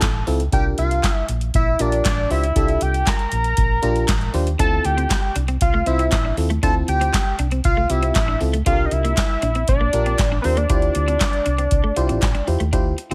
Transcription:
Already playing: A5
0.01 A1, kick, snare, clap, closed hi-hat
0.27 C#2 C4 E4 F4 A4, open hi-hat
0.40 closed hi-hat
0.52 C2 D4 F4 G4 A#4 G5, kick, closed hi-hat
0.78 C2 F5, closed hi-hat
0.91 closed hi-hat
1.03 kick, snare, clap, closed hi-hat
1.14 E5
1.28 A#1, closed hi-hat
1.41 closed hi-hat
1.54 A#1 E5, kick, closed hi-hat
1.79 A#1 D4 F4 G4 A#4 D5, closed hi-hat
1.92 closed hi-hat
2.05 A1 D5, kick, snare, clap, closed hi-hat
2.30 C#2 D4 F4 G4 C5 E5, open hi-hat
2.43 closed hi-hat
2.56 C2 D4 E4 G4 A4, kick, closed hi-hat
2.62 F4
2.68 closed hi-hat
2.81 C2 G5, closed hi-hat
2.94 closed hi-hat
3.07 A#5, kick, snare, clap, closed hi-hat
3.19 closed hi-hat
3.32 A#1, closed hi-hat
3.44 closed hi-hat
3.57 A#1, kick, closed hi-hat
3.82 A#1 D4 F4 G4 A#4, closed hi-hat
3.96 closed hi-hat
4.08 A1, kick, snare, clap, closed hi-hat
4.21 closed hi-hat
4.34 D#2 D4 F4 G4 C5, open hi-hat
4.47 closed hi-hat
4.59 D2 C4 D4 E4 F4 A4 A5, kick, closed hi-hat
4.85 D2 G5, muted clean electric guitar stroke, closed hi-hat
4.98 C4, closed hi-hat
5.10 muted clean electric guitar stroke, kick, snare, clap, closed hi-hat
5.36 C2 D4, closed hi-hat
5.48 C4, closed hi-hat
5.61 C2 F5, kick, closed hi-hat
5.74 A3
5.86 C2 C4 E4 F4 C5 E5, muted clean electric guitar stroke, closed hi-hat
5.99 C4, closed hi-hat
6.11 A1 E5, kick, snare, clap, closed hi-hat
6.25 D4
6.37 D#2 C4 E4 F4 A4, muted clean electric guitar stroke, open hi-hat
6.50 A3, closed hi-hat
6.63 D2 C4 D4 E4 F4 C5 A5, kick, closed hi-hat
6.88 D2 G5, muted clean electric guitar stroke, closed hi-hat
7.01 C4, closed hi-hat
7.14 muted clean electric guitar stroke, kick, snare, clap, closed hi-hat
7.39 C2 D4, closed hi-hat
7.51 C4, closed hi-hat
7.64 C2 F5, kick, closed hi-hat
7.77 A3
7.89 C2 C4 E4 F4 G4 E5, muted clean electric guitar stroke, closed hi-hat
8.03 C4, closed hi-hat
8.15 A1 E5, kick, snare, clap, closed hi-hat
8.28 D4
8.40 C#2 C4 E4 F4 A4, muted clean electric guitar stroke, open hi-hat
8.53 A3, closed hi-hat
8.66 C2 C4 D4 F4 G4 A4 F5, kick, closed hi-hat
8.73 A#4
8.85 D#5
8.91 C2 E5, muted clean electric guitar stroke, closed hi-hat
9.04 A#3, closed hi-hat
9.17 muted clean electric guitar stroke, kick, snare, clap, closed hi-hat
9.42 A#1 D4, closed hi-hat
9.55 C4, closed hi-hat
9.68 A#1 D5, kick, closed hi-hat
9.81 A#3
9.93 A#1 D4 F4 G4 A#4, muted clean electric guitar stroke, closed hi-hat
10.06 C4, closed hi-hat
10.18 A1, kick, snare, clap, closed hi-hat
10.32 D4
10.42 D#2 D4 F4 G4 A#4 B4 C5, muted clean electric guitar stroke, open hi-hat
10.57 A#3 D5, closed hi-hat
10.69 D2 D4 E4 F4 G4 C5, kick, closed hi-hat
10.82 closed hi-hat
10.95 D2, muted clean electric guitar stroke, closed hi-hat
11.08 C4, closed hi-hat
11.20 muted clean electric guitar stroke, kick, snare, clap, closed hi-hat
11.33 closed hi-hat
11.46 C2 D4, closed hi-hat
11.58 C4, closed hi-hat
11.71 C2, kick, closed hi-hat
11.84 A3
11.96 C2 E4 F4 G4 C5, muted clean electric guitar stroke, closed hi-hat
12.09 A1 C4, closed hi-hat
12.22 A1, kick, snare, clap, closed hi-hat
12.35 D4, closed hi-hat
12.47 E2 E4 F4 G4 C5, muted clean electric guitar stroke, open hi-hat
12.60 D#2 A3, closed hi-hat
12.72 D2 D4 E4 F4 G4 C5, kick, closed hi-hat
12.98 muted clean electric guitar stroke, closed hi-hat
13.10 D2 C4 E4 F4 G4 C5

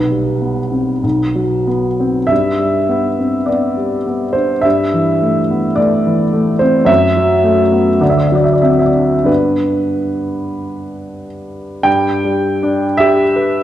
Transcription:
Already playing: B1 B4
0.10 G3
0.41 B3
0.72 C4
1.03 B1
1.35 F#3
1.67 B3
2.00 C4
2.27 G2 E5
2.59 G3
2.89 B3
3.19 C4
3.46 B3 D5
3.77 G3
4.06 B3
4.33 D4 C5
4.61 G2 E5
4.94 E3
5.22 A3
5.50 B3
5.76 A3 D5
6.07 E3
6.33 A3
6.59 C4 C5
6.85 F#2 E5
7.17 F#3
7.44 A3
7.72 B3
8.01 D2 D5
8.10 E5
8.17 D5
8.27 E5
8.32 F#3 D5
8.44 E5
8.53 D5
8.62 C4 E5
8.71 D5
8.79 E5
8.86 D5
8.95 D4
9.24 G2 G3 B3 D4 B4
11.83 G2 G5
12.25 G3
12.63 D4
12.97 G4 E5
13.36 B4

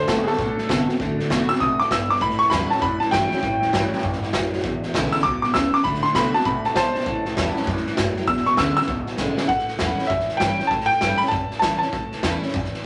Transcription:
0.08 A2 D3 A3 B3 C4 F#4 A4, kick, snare, hi-hat pedal
0.23 D3 G#4, muted upright bass stroke, snare
0.27 B3 A4
0.33 snare
0.38 A2 B2 D3 A3, kick, snare
0.58 D3 A3, snare
0.69 C3 D3 A3 B3 C4 F#4, kick, snare, hi-hat pedal
0.88 D3 B3 C4 F#4, muted upright bass stroke, snare
0.99 D2 D3 A3, kick, snare
1.19 A2 D3 A3, snare
1.30 C3 D3 A3 B3 C4 F#4, kick, snare, hi-hat pedal
1.49 D3 B3 C4 F#4 E6, muted upright bass stroke, snare
1.55 snare
1.60 B2 C3 D3 A3 D#6, kick, snare
1.80 D3 A3 D6, muted upright bass stroke, snare
1.91 G2 A2 D3 B3 E6, kick, snare, hi-hat pedal
2.10 B1 D3 B3 D6, snare
2.16 snare
2.21 A2 E3 B5, kick, snare
2.30 snare
2.39 C#2 A2 E3 C#6, snare
2.50 E2 A2 E3 F#3 G3 C#4 E4 B5, kick, snare, hi-hat pedal
2.70 A2 F#3 C#4 E4 A5, snare
2.77 snare
2.82 E2 F#2 A2 E3 B5, kick, snare
3.00 A2 E3 A5, snare
3.11 G2 A2 E3 F#3 G3 C#4 E4 G5, kick, snare, hi-hat pedal
3.31 A2 F#3 C#4 E4, snare
3.37 snare
3.42 A1 A2 E3, kick, snare
3.61 E2 A2 E3, snare
3.73 G2 A2 E3 F#3 G3 C#4 E4, kick, snare, hi-hat pedal
3.92 A2 F#3 C#4 E4, muted upright bass stroke, snare
3.98 snare
4.03 F#2 G2 A2 E3, kick, snare
4.12 snare
4.22 A2 E3, muted upright bass stroke, snare
4.33 F#2 A2 F#3, kick, snare, hi-hat pedal
4.52 F#1 A2 F#3, snare
4.59 snare
4.63 E1 E2 B2, kick, snare
4.83 G#1 E2 B2, snare
4.94 B1 E2 C#3 D3 G#3 B3 E4, kick, snare, hi-hat pedal
5.12 E2 C#3 E6, snare
5.19 snare
5.23 C#2 E2 B2 D6, kick, snare
5.42 E2 B2 D6, muted upright bass stroke, snare
5.54 D2 E2 C#3 E6, kick, snare, hi-hat pedal
5.74 E2 C#3 D6, muted upright bass stroke, snare
5.84 D2 D3 A3 B5, kick, snare
5.94 snare
6.03 A2 D3 A3 C6, snare
6.15 C3 D3 A3 B3 C4 F#4 B5, kick, snare, hi-hat pedal
6.34 D3 B3 C4 F#4 A5, muted upright bass stroke, snare
6.40 snare
6.45 B2 C3 D3 A3 B5, kick, snare
6.64 D3 A3 A5, muted upright bass stroke, snare
6.76 A2 B2 D3 B3 C5 A5, kick, snare, hi-hat pedal
6.95 F#2 D3 B3, snare
7.00 snare
7.05 A1 A2 E3, kick, snare
7.25 C#2 A2 E3, snare
7.37 E2 A2 E3 F#3 G3 C#4 E4, kick, snare, hi-hat pedal
7.55 A2 F#3 C#4 E4, snare
7.62 snare
7.67 F#2 G2 A2 E3, kick, snare
7.77 snare
7.87 A2 E3, muted upright bass stroke, snare
7.97 F#2 G2 A2 F#3, kick, snare, hi-hat pedal
8.16 A2 F#3, muted upright bass stroke, snare
8.27 E1 E2 B2 E6, kick, snare
8.37 snare
8.46 B1 E2 B2 C#6, snare
8.57 D2 E2 C#3 D3 G#3 B3 E4 E6, kick, snare, hi-hat pedal
8.77 E2 C#3 B3 E4 E6, snare
8.82 snare
8.87 C#2 E2 B2, kick, snare
9.06 E2 B2, muted upright bass stroke, snare
9.17 B1 E2 C#3 D3 G#3 B3 E4, kick, snare, hi-hat pedal
9.37 G#1 E2 C#3 B3 E4, snare
9.48 A1 A2 F#5, kick, snare
9.59 snare
9.68 C#2, snare
9.79 E2 E3 G3 C#4 E4, kick, snare, hi-hat pedal
9.98 C#4 E4, snare
10.04 E5, snare
10.09 E2 F#2, kick, snare
10.20 snare
10.29 snare
10.37 G2 E3 G3 G5, kick, snare, hi-hat pedal
10.42 C#4 E4
10.59 C#4 E4, muted upright bass stroke, snare
10.67 A1 A2 A5, kick, snare
10.81 snare
10.86 E2 G5, snare
11.01 G2 E3 G3 C#4 E4, kick, snare, hi-hat pedal
11.18 E4 B5, muted upright bass stroke, snare
11.23 C#4, snare
11.28 F#2 A5, kick, snare
11.33 E2
11.51 muted upright bass stroke, snare
11.59 E2 E3 G3 A5, kick, snare, hi-hat pedal
11.63 C#4 E4
11.79 C#2 C#4 E4 A5, snare
11.93 A1 A2, kick, snare
12.11 C#2, snare
12.23 E2 E3 G3 C#4 E4, kick, snare, hi-hat pedal
12.42 C#4 E4, snare
12.48 snare
12.54 E2 F#2, kick, snare
12.64 snare
12.74 snare

